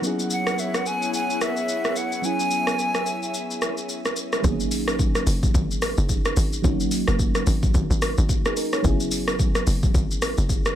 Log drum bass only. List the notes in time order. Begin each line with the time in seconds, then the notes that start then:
4.44 G#1
5.27 F#1
5.54 G#1
5.98 F#1
6.37 G#1
6.64 G#1
7.08 F#1
7.47 G#1
7.74 G#1
7.90 G#1
8.18 G#1
8.84 F#1
9.67 F#1
9.94 G#1
10.38 F#1